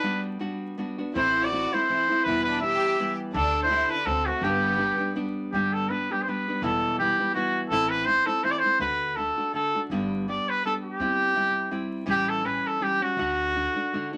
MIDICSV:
0, 0, Header, 1, 5, 480
1, 0, Start_track
1, 0, Key_signature, 1, "major"
1, 0, Tempo, 369914
1, 49, Time_signature, 3, 2, 24, 8
1, 2930, Tempo, 364299
1, 18630, End_track
2, 0, Start_track
2, 0, Title_t, "Trumpet"
2, 0, Program_c, 0, 56
2, 0, Note_on_c, 0, 71, 82
2, 283, Note_off_c, 0, 71, 0
2, 1503, Note_on_c, 0, 72, 88
2, 1867, Note_on_c, 0, 74, 81
2, 1887, Note_off_c, 0, 72, 0
2, 2248, Note_on_c, 0, 72, 84
2, 2268, Note_off_c, 0, 74, 0
2, 2907, Note_on_c, 0, 71, 94
2, 2926, Note_off_c, 0, 72, 0
2, 3158, Note_off_c, 0, 71, 0
2, 3166, Note_on_c, 0, 71, 94
2, 3379, Note_off_c, 0, 71, 0
2, 3387, Note_on_c, 0, 76, 83
2, 4083, Note_off_c, 0, 76, 0
2, 4364, Note_on_c, 0, 69, 94
2, 4706, Note_off_c, 0, 69, 0
2, 4731, Note_on_c, 0, 72, 82
2, 5094, Note_on_c, 0, 71, 87
2, 5114, Note_off_c, 0, 72, 0
2, 5302, Note_on_c, 0, 69, 86
2, 5322, Note_off_c, 0, 71, 0
2, 5566, Note_on_c, 0, 66, 78
2, 5586, Note_off_c, 0, 69, 0
2, 5790, Note_on_c, 0, 67, 81
2, 5810, Note_off_c, 0, 66, 0
2, 6755, Note_off_c, 0, 67, 0
2, 7232, Note_on_c, 0, 67, 72
2, 7504, Note_on_c, 0, 69, 70
2, 7524, Note_off_c, 0, 67, 0
2, 7732, Note_on_c, 0, 71, 78
2, 7752, Note_off_c, 0, 69, 0
2, 8014, Note_on_c, 0, 67, 69
2, 8033, Note_off_c, 0, 71, 0
2, 8153, Note_on_c, 0, 72, 56
2, 8173, Note_off_c, 0, 67, 0
2, 8237, Note_on_c, 0, 71, 77
2, 8257, Note_off_c, 0, 72, 0
2, 8686, Note_off_c, 0, 71, 0
2, 8694, Note_on_c, 0, 69, 85
2, 9135, Note_off_c, 0, 69, 0
2, 9164, Note_on_c, 0, 67, 81
2, 9604, Note_off_c, 0, 67, 0
2, 9627, Note_on_c, 0, 66, 81
2, 9969, Note_off_c, 0, 66, 0
2, 10096, Note_on_c, 0, 69, 102
2, 10354, Note_on_c, 0, 71, 92
2, 10374, Note_off_c, 0, 69, 0
2, 10562, Note_on_c, 0, 72, 96
2, 10581, Note_off_c, 0, 71, 0
2, 10839, Note_on_c, 0, 69, 87
2, 10858, Note_off_c, 0, 72, 0
2, 11072, Note_on_c, 0, 72, 94
2, 11091, Note_off_c, 0, 69, 0
2, 11165, Note_on_c, 0, 74, 88
2, 11184, Note_off_c, 0, 72, 0
2, 11267, Note_on_c, 0, 72, 90
2, 11287, Note_off_c, 0, 74, 0
2, 11545, Note_off_c, 0, 72, 0
2, 11559, Note_on_c, 0, 71, 87
2, 12025, Note_on_c, 0, 69, 75
2, 12045, Note_off_c, 0, 71, 0
2, 12512, Note_off_c, 0, 69, 0
2, 12533, Note_on_c, 0, 69, 77
2, 12872, Note_off_c, 0, 69, 0
2, 13511, Note_on_c, 0, 74, 75
2, 13777, Note_on_c, 0, 71, 83
2, 13797, Note_off_c, 0, 74, 0
2, 13979, Note_off_c, 0, 71, 0
2, 13993, Note_on_c, 0, 69, 84
2, 14101, Note_off_c, 0, 69, 0
2, 14233, Note_on_c, 0, 67, 90
2, 15595, Note_off_c, 0, 67, 0
2, 15896, Note_on_c, 0, 67, 90
2, 16145, Note_on_c, 0, 69, 80
2, 16164, Note_off_c, 0, 67, 0
2, 16361, Note_on_c, 0, 71, 78
2, 16381, Note_off_c, 0, 69, 0
2, 16647, Note_on_c, 0, 69, 76
2, 16667, Note_off_c, 0, 71, 0
2, 16857, Note_on_c, 0, 67, 84
2, 16877, Note_off_c, 0, 69, 0
2, 17114, Note_on_c, 0, 66, 84
2, 17134, Note_off_c, 0, 67, 0
2, 18564, Note_off_c, 0, 66, 0
2, 18630, End_track
3, 0, Start_track
3, 0, Title_t, "Violin section"
3, 0, Program_c, 1, 48
3, 0, Note_on_c, 1, 62, 53
3, 281, Note_off_c, 1, 62, 0
3, 1508, Note_on_c, 1, 64, 78
3, 1848, Note_off_c, 1, 64, 0
3, 1877, Note_on_c, 1, 66, 83
3, 2241, Note_off_c, 1, 66, 0
3, 2256, Note_on_c, 1, 64, 67
3, 2919, Note_off_c, 1, 64, 0
3, 2934, Note_on_c, 1, 64, 75
3, 3193, Note_off_c, 1, 64, 0
3, 3210, Note_on_c, 1, 62, 74
3, 3406, Note_off_c, 1, 62, 0
3, 3432, Note_on_c, 1, 67, 91
3, 4107, Note_off_c, 1, 67, 0
3, 4374, Note_on_c, 1, 62, 79
3, 4712, Note_off_c, 1, 62, 0
3, 4779, Note_on_c, 1, 64, 76
3, 5099, Note_off_c, 1, 64, 0
3, 5123, Note_on_c, 1, 62, 59
3, 5327, Note_off_c, 1, 62, 0
3, 5355, Note_on_c, 1, 60, 57
3, 5582, Note_on_c, 1, 57, 58
3, 5591, Note_off_c, 1, 60, 0
3, 5795, Note_off_c, 1, 57, 0
3, 5796, Note_on_c, 1, 59, 72
3, 6758, Note_off_c, 1, 59, 0
3, 18630, End_track
4, 0, Start_track
4, 0, Title_t, "Nylon-string guitar"
4, 0, Program_c, 2, 24
4, 42, Note_on_c, 2, 55, 75
4, 49, Note_on_c, 2, 59, 80
4, 51, Note_on_c, 2, 62, 81
4, 57, Note_on_c, 2, 66, 72
4, 496, Note_off_c, 2, 55, 0
4, 502, Note_off_c, 2, 59, 0
4, 511, Note_on_c, 2, 55, 60
4, 513, Note_off_c, 2, 66, 0
4, 515, Note_off_c, 2, 62, 0
4, 518, Note_on_c, 2, 59, 57
4, 528, Note_on_c, 2, 66, 70
4, 531, Note_on_c, 2, 62, 57
4, 991, Note_off_c, 2, 55, 0
4, 993, Note_off_c, 2, 59, 0
4, 1006, Note_on_c, 2, 55, 60
4, 1007, Note_off_c, 2, 62, 0
4, 1009, Note_on_c, 2, 59, 63
4, 1013, Note_off_c, 2, 66, 0
4, 1022, Note_on_c, 2, 62, 70
4, 1028, Note_on_c, 2, 66, 59
4, 1259, Note_off_c, 2, 66, 0
4, 1267, Note_off_c, 2, 62, 0
4, 1272, Note_off_c, 2, 55, 0
4, 1274, Note_off_c, 2, 59, 0
4, 1275, Note_on_c, 2, 66, 41
4, 1283, Note_on_c, 2, 62, 45
4, 1294, Note_on_c, 2, 59, 33
4, 1494, Note_on_c, 2, 45, 74
4, 1497, Note_off_c, 2, 59, 0
4, 1497, Note_off_c, 2, 66, 0
4, 1500, Note_off_c, 2, 62, 0
4, 1502, Note_on_c, 2, 57, 77
4, 1505, Note_on_c, 2, 60, 80
4, 1507, Note_on_c, 2, 52, 71
4, 1510, Note_on_c, 2, 64, 68
4, 1953, Note_off_c, 2, 52, 0
4, 1968, Note_on_c, 2, 52, 52
4, 1972, Note_off_c, 2, 57, 0
4, 1975, Note_off_c, 2, 60, 0
4, 1976, Note_off_c, 2, 45, 0
4, 1981, Note_off_c, 2, 64, 0
4, 1987, Note_on_c, 2, 57, 51
4, 1990, Note_on_c, 2, 60, 60
4, 1997, Note_on_c, 2, 64, 62
4, 2232, Note_off_c, 2, 52, 0
4, 2234, Note_off_c, 2, 64, 0
4, 2239, Note_off_c, 2, 60, 0
4, 2242, Note_off_c, 2, 57, 0
4, 2249, Note_on_c, 2, 64, 50
4, 2255, Note_on_c, 2, 60, 38
4, 2262, Note_on_c, 2, 57, 41
4, 2449, Note_off_c, 2, 57, 0
4, 2450, Note_off_c, 2, 60, 0
4, 2450, Note_on_c, 2, 52, 57
4, 2462, Note_off_c, 2, 64, 0
4, 2464, Note_on_c, 2, 57, 58
4, 2465, Note_on_c, 2, 60, 63
4, 2475, Note_on_c, 2, 64, 62
4, 2696, Note_off_c, 2, 64, 0
4, 2703, Note_off_c, 2, 60, 0
4, 2711, Note_on_c, 2, 64, 44
4, 2712, Note_off_c, 2, 52, 0
4, 2716, Note_off_c, 2, 57, 0
4, 2719, Note_on_c, 2, 60, 47
4, 2731, Note_on_c, 2, 57, 36
4, 2930, Note_off_c, 2, 64, 0
4, 2934, Note_off_c, 2, 60, 0
4, 2940, Note_off_c, 2, 57, 0
4, 2946, Note_on_c, 2, 47, 81
4, 2950, Note_on_c, 2, 40, 78
4, 2953, Note_on_c, 2, 52, 76
4, 2957, Note_on_c, 2, 64, 80
4, 2958, Note_on_c, 2, 55, 76
4, 2967, Note_on_c, 2, 59, 87
4, 3392, Note_off_c, 2, 52, 0
4, 3401, Note_off_c, 2, 55, 0
4, 3401, Note_off_c, 2, 59, 0
4, 3403, Note_off_c, 2, 64, 0
4, 3408, Note_on_c, 2, 52, 53
4, 3416, Note_on_c, 2, 55, 51
4, 3417, Note_on_c, 2, 59, 53
4, 3419, Note_off_c, 2, 47, 0
4, 3419, Note_on_c, 2, 64, 67
4, 3421, Note_off_c, 2, 40, 0
4, 3878, Note_off_c, 2, 52, 0
4, 3884, Note_off_c, 2, 55, 0
4, 3887, Note_off_c, 2, 59, 0
4, 3893, Note_off_c, 2, 64, 0
4, 3894, Note_on_c, 2, 52, 58
4, 3900, Note_on_c, 2, 55, 63
4, 3903, Note_on_c, 2, 59, 68
4, 3915, Note_on_c, 2, 64, 69
4, 4355, Note_off_c, 2, 52, 0
4, 4361, Note_on_c, 2, 50, 72
4, 4370, Note_off_c, 2, 59, 0
4, 4371, Note_off_c, 2, 55, 0
4, 4375, Note_on_c, 2, 62, 93
4, 4376, Note_on_c, 2, 57, 78
4, 4378, Note_off_c, 2, 64, 0
4, 4385, Note_on_c, 2, 67, 75
4, 4820, Note_off_c, 2, 57, 0
4, 4833, Note_off_c, 2, 50, 0
4, 4835, Note_on_c, 2, 57, 58
4, 4837, Note_off_c, 2, 67, 0
4, 4838, Note_on_c, 2, 50, 62
4, 4841, Note_off_c, 2, 62, 0
4, 4847, Note_on_c, 2, 62, 55
4, 4852, Note_on_c, 2, 67, 60
4, 5290, Note_off_c, 2, 57, 0
4, 5302, Note_off_c, 2, 50, 0
4, 5305, Note_on_c, 2, 57, 65
4, 5307, Note_on_c, 2, 50, 57
4, 5311, Note_off_c, 2, 67, 0
4, 5314, Note_off_c, 2, 62, 0
4, 5317, Note_on_c, 2, 66, 64
4, 5319, Note_on_c, 2, 60, 59
4, 5547, Note_off_c, 2, 66, 0
4, 5560, Note_off_c, 2, 60, 0
4, 5563, Note_on_c, 2, 66, 39
4, 5566, Note_off_c, 2, 57, 0
4, 5567, Note_off_c, 2, 50, 0
4, 5576, Note_on_c, 2, 60, 34
4, 5580, Note_on_c, 2, 57, 32
4, 5785, Note_off_c, 2, 66, 0
4, 5792, Note_off_c, 2, 60, 0
4, 5794, Note_off_c, 2, 57, 0
4, 5801, Note_on_c, 2, 43, 73
4, 5801, Note_on_c, 2, 50, 82
4, 5808, Note_on_c, 2, 67, 82
4, 5812, Note_on_c, 2, 55, 81
4, 5812, Note_on_c, 2, 62, 86
4, 5813, Note_on_c, 2, 59, 88
4, 6243, Note_off_c, 2, 55, 0
4, 6243, Note_off_c, 2, 62, 0
4, 6248, Note_off_c, 2, 59, 0
4, 6249, Note_on_c, 2, 55, 55
4, 6254, Note_on_c, 2, 59, 53
4, 6259, Note_on_c, 2, 62, 68
4, 6267, Note_off_c, 2, 67, 0
4, 6273, Note_on_c, 2, 67, 61
4, 6274, Note_off_c, 2, 43, 0
4, 6274, Note_off_c, 2, 50, 0
4, 6498, Note_off_c, 2, 67, 0
4, 6514, Note_on_c, 2, 67, 53
4, 6516, Note_off_c, 2, 62, 0
4, 6520, Note_off_c, 2, 55, 0
4, 6522, Note_off_c, 2, 59, 0
4, 6532, Note_on_c, 2, 62, 45
4, 6543, Note_on_c, 2, 59, 38
4, 6545, Note_on_c, 2, 55, 45
4, 6732, Note_off_c, 2, 55, 0
4, 6732, Note_off_c, 2, 59, 0
4, 6744, Note_off_c, 2, 62, 0
4, 6747, Note_off_c, 2, 67, 0
4, 6748, Note_on_c, 2, 55, 58
4, 6748, Note_on_c, 2, 59, 65
4, 6760, Note_on_c, 2, 62, 72
4, 6762, Note_on_c, 2, 67, 69
4, 7248, Note_off_c, 2, 62, 0
4, 7248, Note_on_c, 2, 43, 61
4, 7254, Note_on_c, 2, 50, 67
4, 7255, Note_off_c, 2, 55, 0
4, 7256, Note_off_c, 2, 59, 0
4, 7261, Note_on_c, 2, 55, 79
4, 7262, Note_on_c, 2, 59, 65
4, 7264, Note_off_c, 2, 67, 0
4, 7269, Note_on_c, 2, 67, 69
4, 7271, Note_on_c, 2, 62, 74
4, 7710, Note_off_c, 2, 59, 0
4, 7711, Note_off_c, 2, 55, 0
4, 7721, Note_off_c, 2, 62, 0
4, 7724, Note_off_c, 2, 67, 0
4, 7726, Note_on_c, 2, 59, 54
4, 7727, Note_on_c, 2, 55, 49
4, 7730, Note_off_c, 2, 43, 0
4, 7733, Note_off_c, 2, 50, 0
4, 7737, Note_on_c, 2, 62, 57
4, 7739, Note_on_c, 2, 67, 50
4, 7985, Note_off_c, 2, 67, 0
4, 7989, Note_off_c, 2, 59, 0
4, 7990, Note_off_c, 2, 55, 0
4, 7995, Note_off_c, 2, 62, 0
4, 8001, Note_on_c, 2, 67, 43
4, 8011, Note_on_c, 2, 62, 37
4, 8016, Note_on_c, 2, 59, 34
4, 8034, Note_on_c, 2, 55, 30
4, 8201, Note_off_c, 2, 55, 0
4, 8212, Note_off_c, 2, 59, 0
4, 8216, Note_on_c, 2, 55, 49
4, 8218, Note_off_c, 2, 62, 0
4, 8218, Note_off_c, 2, 67, 0
4, 8228, Note_on_c, 2, 59, 61
4, 8234, Note_on_c, 2, 62, 53
4, 8244, Note_on_c, 2, 67, 57
4, 8476, Note_off_c, 2, 55, 0
4, 8477, Note_off_c, 2, 67, 0
4, 8482, Note_off_c, 2, 59, 0
4, 8485, Note_off_c, 2, 62, 0
4, 8493, Note_on_c, 2, 67, 48
4, 8504, Note_on_c, 2, 62, 33
4, 8511, Note_on_c, 2, 59, 40
4, 8519, Note_on_c, 2, 55, 33
4, 8683, Note_off_c, 2, 55, 0
4, 8687, Note_on_c, 2, 40, 80
4, 8689, Note_on_c, 2, 47, 78
4, 8690, Note_off_c, 2, 59, 0
4, 8696, Note_off_c, 2, 67, 0
4, 8697, Note_on_c, 2, 52, 69
4, 8699, Note_on_c, 2, 55, 72
4, 8700, Note_off_c, 2, 62, 0
4, 8701, Note_on_c, 2, 64, 77
4, 8705, Note_on_c, 2, 59, 81
4, 9158, Note_off_c, 2, 52, 0
4, 9165, Note_off_c, 2, 40, 0
4, 9166, Note_off_c, 2, 47, 0
4, 9171, Note_off_c, 2, 55, 0
4, 9172, Note_off_c, 2, 64, 0
4, 9174, Note_off_c, 2, 59, 0
4, 9174, Note_on_c, 2, 52, 55
4, 9185, Note_on_c, 2, 55, 56
4, 9193, Note_on_c, 2, 59, 60
4, 9199, Note_on_c, 2, 64, 57
4, 9420, Note_off_c, 2, 64, 0
4, 9428, Note_off_c, 2, 52, 0
4, 9428, Note_off_c, 2, 59, 0
4, 9429, Note_off_c, 2, 55, 0
4, 9436, Note_on_c, 2, 64, 44
4, 9444, Note_on_c, 2, 59, 45
4, 9445, Note_on_c, 2, 55, 39
4, 9458, Note_on_c, 2, 52, 38
4, 9625, Note_off_c, 2, 52, 0
4, 9626, Note_off_c, 2, 55, 0
4, 9639, Note_off_c, 2, 64, 0
4, 9640, Note_on_c, 2, 52, 54
4, 9641, Note_off_c, 2, 59, 0
4, 9642, Note_on_c, 2, 55, 60
4, 9655, Note_on_c, 2, 64, 60
4, 9657, Note_on_c, 2, 59, 68
4, 10106, Note_off_c, 2, 52, 0
4, 10110, Note_off_c, 2, 55, 0
4, 10117, Note_off_c, 2, 64, 0
4, 10118, Note_off_c, 2, 59, 0
4, 10119, Note_on_c, 2, 45, 92
4, 10121, Note_on_c, 2, 52, 75
4, 10130, Note_on_c, 2, 57, 75
4, 10136, Note_on_c, 2, 64, 95
4, 10139, Note_on_c, 2, 60, 78
4, 10566, Note_off_c, 2, 52, 0
4, 10579, Note_off_c, 2, 57, 0
4, 10582, Note_on_c, 2, 52, 60
4, 10584, Note_off_c, 2, 60, 0
4, 10589, Note_off_c, 2, 45, 0
4, 10591, Note_off_c, 2, 64, 0
4, 10595, Note_on_c, 2, 57, 53
4, 10600, Note_on_c, 2, 60, 62
4, 10607, Note_on_c, 2, 64, 65
4, 10831, Note_off_c, 2, 64, 0
4, 10836, Note_off_c, 2, 60, 0
4, 10842, Note_off_c, 2, 52, 0
4, 10846, Note_on_c, 2, 64, 50
4, 10848, Note_off_c, 2, 57, 0
4, 10852, Note_on_c, 2, 60, 41
4, 10872, Note_on_c, 2, 57, 41
4, 11057, Note_off_c, 2, 57, 0
4, 11063, Note_off_c, 2, 64, 0
4, 11066, Note_off_c, 2, 60, 0
4, 11067, Note_on_c, 2, 52, 61
4, 11073, Note_on_c, 2, 57, 67
4, 11083, Note_on_c, 2, 60, 58
4, 11083, Note_on_c, 2, 64, 65
4, 11322, Note_off_c, 2, 64, 0
4, 11324, Note_off_c, 2, 52, 0
4, 11326, Note_off_c, 2, 57, 0
4, 11331, Note_off_c, 2, 60, 0
4, 11338, Note_on_c, 2, 64, 42
4, 11351, Note_on_c, 2, 60, 38
4, 11364, Note_on_c, 2, 57, 37
4, 11537, Note_off_c, 2, 57, 0
4, 11549, Note_off_c, 2, 64, 0
4, 11553, Note_on_c, 2, 57, 90
4, 11555, Note_off_c, 2, 60, 0
4, 11557, Note_on_c, 2, 50, 78
4, 11567, Note_on_c, 2, 62, 87
4, 11568, Note_on_c, 2, 66, 86
4, 12030, Note_off_c, 2, 57, 0
4, 12032, Note_off_c, 2, 50, 0
4, 12037, Note_off_c, 2, 62, 0
4, 12037, Note_off_c, 2, 66, 0
4, 12049, Note_on_c, 2, 50, 47
4, 12058, Note_on_c, 2, 57, 57
4, 12059, Note_on_c, 2, 66, 60
4, 12063, Note_on_c, 2, 62, 48
4, 12293, Note_off_c, 2, 66, 0
4, 12301, Note_off_c, 2, 50, 0
4, 12301, Note_off_c, 2, 62, 0
4, 12305, Note_off_c, 2, 57, 0
4, 12308, Note_on_c, 2, 66, 38
4, 12316, Note_on_c, 2, 62, 37
4, 12323, Note_on_c, 2, 57, 33
4, 12506, Note_off_c, 2, 57, 0
4, 12522, Note_off_c, 2, 66, 0
4, 12522, Note_on_c, 2, 50, 57
4, 12522, Note_on_c, 2, 57, 51
4, 12526, Note_off_c, 2, 62, 0
4, 12539, Note_on_c, 2, 62, 51
4, 12543, Note_on_c, 2, 66, 52
4, 12781, Note_off_c, 2, 50, 0
4, 12781, Note_off_c, 2, 57, 0
4, 12784, Note_off_c, 2, 66, 0
4, 12790, Note_off_c, 2, 62, 0
4, 12800, Note_on_c, 2, 66, 41
4, 12812, Note_on_c, 2, 57, 32
4, 12813, Note_on_c, 2, 62, 30
4, 13007, Note_off_c, 2, 62, 0
4, 13010, Note_off_c, 2, 66, 0
4, 13012, Note_on_c, 2, 50, 77
4, 13014, Note_off_c, 2, 57, 0
4, 13015, Note_on_c, 2, 43, 74
4, 13019, Note_on_c, 2, 59, 93
4, 13021, Note_on_c, 2, 55, 85
4, 13023, Note_on_c, 2, 62, 88
4, 13028, Note_on_c, 2, 67, 74
4, 13489, Note_off_c, 2, 59, 0
4, 13491, Note_off_c, 2, 50, 0
4, 13491, Note_off_c, 2, 55, 0
4, 13492, Note_off_c, 2, 43, 0
4, 13496, Note_off_c, 2, 62, 0
4, 13496, Note_on_c, 2, 55, 52
4, 13504, Note_on_c, 2, 59, 53
4, 13511, Note_on_c, 2, 62, 57
4, 13512, Note_off_c, 2, 67, 0
4, 13517, Note_on_c, 2, 67, 55
4, 13973, Note_off_c, 2, 59, 0
4, 13977, Note_off_c, 2, 55, 0
4, 13977, Note_off_c, 2, 62, 0
4, 13983, Note_on_c, 2, 55, 50
4, 13991, Note_on_c, 2, 59, 52
4, 14004, Note_off_c, 2, 67, 0
4, 14004, Note_on_c, 2, 62, 53
4, 14009, Note_on_c, 2, 67, 54
4, 14441, Note_off_c, 2, 59, 0
4, 14446, Note_on_c, 2, 60, 75
4, 14448, Note_off_c, 2, 55, 0
4, 14453, Note_on_c, 2, 55, 65
4, 14454, Note_off_c, 2, 62, 0
4, 14458, Note_off_c, 2, 67, 0
4, 14463, Note_on_c, 2, 67, 82
4, 14464, Note_on_c, 2, 64, 74
4, 14900, Note_off_c, 2, 55, 0
4, 14905, Note_off_c, 2, 60, 0
4, 14907, Note_off_c, 2, 64, 0
4, 14915, Note_on_c, 2, 55, 61
4, 14920, Note_off_c, 2, 67, 0
4, 14921, Note_on_c, 2, 60, 60
4, 14923, Note_on_c, 2, 64, 66
4, 14938, Note_on_c, 2, 67, 71
4, 15370, Note_off_c, 2, 55, 0
4, 15371, Note_off_c, 2, 64, 0
4, 15374, Note_off_c, 2, 60, 0
4, 15386, Note_off_c, 2, 67, 0
4, 15386, Note_on_c, 2, 55, 65
4, 15387, Note_on_c, 2, 64, 62
4, 15390, Note_on_c, 2, 60, 61
4, 15401, Note_on_c, 2, 67, 66
4, 15834, Note_off_c, 2, 55, 0
4, 15836, Note_off_c, 2, 67, 0
4, 15841, Note_on_c, 2, 45, 84
4, 15845, Note_off_c, 2, 60, 0
4, 15850, Note_on_c, 2, 52, 68
4, 15850, Note_on_c, 2, 55, 83
4, 15852, Note_off_c, 2, 64, 0
4, 15852, Note_on_c, 2, 67, 90
4, 15857, Note_on_c, 2, 61, 85
4, 16329, Note_off_c, 2, 45, 0
4, 16330, Note_off_c, 2, 52, 0
4, 16333, Note_off_c, 2, 55, 0
4, 16334, Note_off_c, 2, 67, 0
4, 16337, Note_off_c, 2, 61, 0
4, 16346, Note_on_c, 2, 52, 57
4, 16354, Note_on_c, 2, 55, 48
4, 16361, Note_on_c, 2, 61, 65
4, 16366, Note_on_c, 2, 67, 69
4, 16807, Note_off_c, 2, 52, 0
4, 16809, Note_off_c, 2, 55, 0
4, 16821, Note_off_c, 2, 61, 0
4, 16822, Note_on_c, 2, 52, 53
4, 16825, Note_on_c, 2, 55, 60
4, 16828, Note_off_c, 2, 67, 0
4, 16836, Note_on_c, 2, 61, 54
4, 16843, Note_on_c, 2, 67, 57
4, 17081, Note_off_c, 2, 52, 0
4, 17082, Note_off_c, 2, 55, 0
4, 17082, Note_off_c, 2, 67, 0
4, 17088, Note_off_c, 2, 61, 0
4, 17098, Note_on_c, 2, 67, 39
4, 17104, Note_on_c, 2, 61, 45
4, 17118, Note_on_c, 2, 55, 38
4, 17310, Note_off_c, 2, 67, 0
4, 17310, Note_on_c, 2, 50, 88
4, 17313, Note_off_c, 2, 61, 0
4, 17318, Note_off_c, 2, 55, 0
4, 17323, Note_on_c, 2, 57, 68
4, 17323, Note_on_c, 2, 62, 74
4, 17336, Note_on_c, 2, 66, 92
4, 17793, Note_off_c, 2, 50, 0
4, 17799, Note_off_c, 2, 62, 0
4, 17800, Note_off_c, 2, 57, 0
4, 17806, Note_off_c, 2, 66, 0
4, 17812, Note_on_c, 2, 50, 57
4, 17820, Note_on_c, 2, 57, 53
4, 17827, Note_on_c, 2, 62, 65
4, 17836, Note_on_c, 2, 66, 61
4, 18049, Note_off_c, 2, 66, 0
4, 18065, Note_on_c, 2, 66, 47
4, 18066, Note_off_c, 2, 50, 0
4, 18068, Note_off_c, 2, 62, 0
4, 18070, Note_off_c, 2, 57, 0
4, 18084, Note_on_c, 2, 62, 47
4, 18090, Note_on_c, 2, 57, 39
4, 18285, Note_off_c, 2, 66, 0
4, 18294, Note_off_c, 2, 62, 0
4, 18297, Note_off_c, 2, 57, 0
4, 18308, Note_on_c, 2, 50, 57
4, 18317, Note_on_c, 2, 57, 57
4, 18322, Note_on_c, 2, 66, 69
4, 18323, Note_on_c, 2, 62, 69
4, 18557, Note_off_c, 2, 66, 0
4, 18560, Note_off_c, 2, 62, 0
4, 18561, Note_off_c, 2, 50, 0
4, 18565, Note_off_c, 2, 57, 0
4, 18573, Note_on_c, 2, 66, 51
4, 18576, Note_on_c, 2, 62, 44
4, 18589, Note_on_c, 2, 57, 38
4, 18630, Note_off_c, 2, 57, 0
4, 18630, Note_off_c, 2, 62, 0
4, 18630, Note_off_c, 2, 66, 0
4, 18630, End_track
5, 0, Start_track
5, 0, Title_t, "Upright bass"
5, 0, Program_c, 3, 32
5, 1494, Note_on_c, 3, 33, 94
5, 2118, Note_off_c, 3, 33, 0
5, 2933, Note_on_c, 3, 28, 85
5, 3555, Note_off_c, 3, 28, 0
5, 4360, Note_on_c, 3, 38, 113
5, 4979, Note_off_c, 3, 38, 0
5, 5299, Note_on_c, 3, 38, 80
5, 5612, Note_off_c, 3, 38, 0
5, 5772, Note_on_c, 3, 31, 98
5, 6405, Note_off_c, 3, 31, 0
5, 7236, Note_on_c, 3, 31, 80
5, 7868, Note_off_c, 3, 31, 0
5, 8676, Note_on_c, 3, 28, 97
5, 9297, Note_off_c, 3, 28, 0
5, 10105, Note_on_c, 3, 33, 80
5, 10725, Note_off_c, 3, 33, 0
5, 11542, Note_on_c, 3, 38, 86
5, 12173, Note_off_c, 3, 38, 0
5, 12996, Note_on_c, 3, 31, 81
5, 13624, Note_off_c, 3, 31, 0
5, 14441, Note_on_c, 3, 31, 77
5, 15054, Note_off_c, 3, 31, 0
5, 15871, Note_on_c, 3, 33, 84
5, 16490, Note_off_c, 3, 33, 0
5, 17302, Note_on_c, 3, 38, 78
5, 17938, Note_off_c, 3, 38, 0
5, 18630, End_track
0, 0, End_of_file